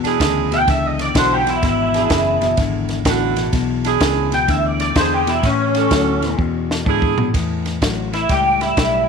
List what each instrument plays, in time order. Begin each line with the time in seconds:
Already playing: clean electric guitar E2 B2
0.03 saxophone section D4 E4 G#4, muted fingered electric bass stroke, snare, ride
0.19 fingered electric bass D2, clean electric guitar E2 C#3, kick, snare, ride
0.51 clean electric guitar E2 B2 G5, snare, ride
0.67 fingered electric bass C#2, clean electric guitar E2 D3 E5, kick, snare, ride
0.86 clean electric guitar D#5
0.99 clean electric guitar D5, snare, ride
1.14 fingered electric bass B1, clean electric guitar E2 D3 C5, saxophone section D4 E4 F#4, kick, snare, ride
1.34 clean electric guitar G4
1.45 clean electric guitar E2 B2 E4, snare, ride
1.62 fingered electric bass G#1, clean electric guitar E2 B2 E4, kick, snare, ride
1.94 saxophone section D4 E4 G#4, snare, ride
2.09 fingered electric bass F#1, clean electric guitar E2 C#3, kick, snare, ride
2.41 clean electric guitar E2 B2, snare, ride
2.57 fingered electric bass G#1, clean electric guitar E2 D3, kick, snare, ride
2.89 snare, ride
3.05 fingered electric bass A1, clean electric guitar E2 D3, saxophone section D4 E4 F#4, kick, snare, ride
3.36 clean electric guitar E2 B2, snare, ride
3.53 fingered electric bass B1, clean electric guitar E2 B2, kick, snare, ride
3.84 saxophone section D4 E4 G#4, snare, ride
4.00 fingered electric bass C#2, clean electric guitar E2 C#3, kick, snare, ride
4.31 clean electric guitar E2 B2 G5, snare, ride
4.47 fingered electric bass D2, clean electric guitar E2 D3 E5, kick, snare, ride
4.66 clean electric guitar D5
4.80 clean electric guitar D5, snare, ride
4.95 clean electric guitar E2 D3 C5, fingered electric bass E2, saxophone section D4 E4 G#4, kick, snare, ride
5.14 clean electric guitar G4
5.26 clean electric guitar E2 B2 E4, snare, ride
5.42 clean electric guitar A2 E3 C#4, fingered electric bass A2, kick, snare, ride
5.75 saxophone section C#4 G4 A4, snare, ride
5.90 fingered electric bass D2, clean electric guitar A2 F#3, kick, snare, ride
6.21 clean electric guitar A2 E3, snare, ride
6.38 clean electric guitar E2 B2, fingered electric bass E2, kick
6.71 snare
6.85 clean electric guitar E2 D3, fingered electric bass G#2, saxophone section D4 E4 G#4, kick
7.02 kick
7.17 clean electric guitar E2 B2, floor tom
7.33 fingered electric bass E2, clean electric guitar A2 E3, kick, snare, ride
7.66 snare, ride
7.81 fingered electric bass A1, clean electric guitar A2 F#3, kick, snare, ride
8.13 clean electric guitar A2 E3 E4, snare, ride
8.29 fingered electric bass C#2, clean electric guitar A2 G3 G4, kick, snare, ride
8.61 clean electric guitar E4, snare, ride
8.77 fingered electric bass B1, clean electric guitar A2 G3, kick, snare, ride